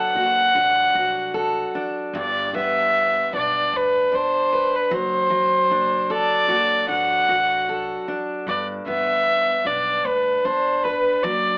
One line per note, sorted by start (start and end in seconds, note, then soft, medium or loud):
0.00 2.14 F#3 medium
0.00 0.55 D4 medium
0.00 1.33 A4 medium
0.00 1.76 F#5 medium
0.15 0.48 F#1 medium
0.15 0.94 F#4 soft
0.55 0.88 A1 medium
0.55 1.75 D4 soft
0.95 1.60 C2 medium
0.95 2.23 F#4 soft
1.34 2.22 A4 medium
1.75 2.54 D4 medium
2.13 2.46 G1 medium
2.13 5.00 G2 medium
2.19 2.53 D5 medium
2.53 3.19 G1 medium
2.53 3.73 B3 soft
2.53 3.30 E5 medium
3.33 3.66 B1 medium
3.33 4.11 D4 soft
3.33 3.78 D5 medium
3.73 4.05 D2 medium
3.73 4.17 B4 medium
4.12 4.77 G1 medium
4.12 5.71 D4 soft
4.12 4.77 C5 medium
4.53 5.00 B4 medium
4.75 4.94 B4 medium
4.91 5.56 F#1 medium
4.91 5.29 F#3 medium
4.91 6.13 C5 medium
5.30 8.47 F#3 medium
5.70 6.35 F#1 medium
5.70 6.88 D4 soft
6.10 7.68 A4 medium
6.10 6.89 D5 medium
6.49 6.82 F#1 medium
6.49 7.28 F#4 medium
6.88 7.21 A1 medium
6.88 8.08 D4 soft
6.88 8.04 F#5 medium
7.29 7.93 C2 medium
7.29 8.56 F#4 soft
7.69 8.56 A4 medium
8.08 8.87 D4 medium
8.47 8.79 G1 medium
8.47 11.32 G2 medium
8.47 8.66 D5 medium
8.86 9.51 G1 medium
8.86 10.05 B3 soft
8.86 9.68 E5 medium
9.65 9.98 B1 medium
9.65 10.45 D4 soft
9.65 10.08 D5 medium
10.05 10.37 D2 medium
10.05 10.47 B4 medium
10.45 11.09 G1 medium
10.45 11.58 D4 soft
10.45 10.85 C5 medium
10.84 11.25 B4 medium
10.84 11.32 B4 medium
11.23 11.58 F#1 medium
11.23 11.58 F#3 medium
11.23 11.58 D5 medium